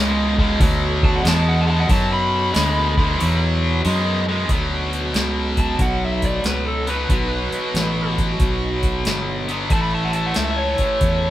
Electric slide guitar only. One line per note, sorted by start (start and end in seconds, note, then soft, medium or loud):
1.05 1.19 A5 loud
1.16 1.24 F#5 loud
1.28 1.35 A5 loud
1.36 1.45 A5 medium
1.49 1.69 F#5 loud
1.61 1.65 A5 loud
1.70 1.84 A5 loud
1.80 1.89 F#5 medium
1.91 2.12 A5 loud
2.13 3.38 B5 loud
5.60 5.80 A5 medium
5.81 6.02 F#5 medium
6.04 6.24 E5 medium
6.26 6.46 D5 medium
6.46 6.66 B4 medium
6.67 6.88 A4 medium
6.90 8.16 B4 medium
9.73 9.82 A5 medium
9.82 9.91 B5 medium
9.95 10.15 A5 medium
10.04 10.10 F#5 medium
10.16 10.29 A5 medium
10.26 10.35 F#5 medium
10.37 10.58 E5 medium
10.58 11.30 C#5 medium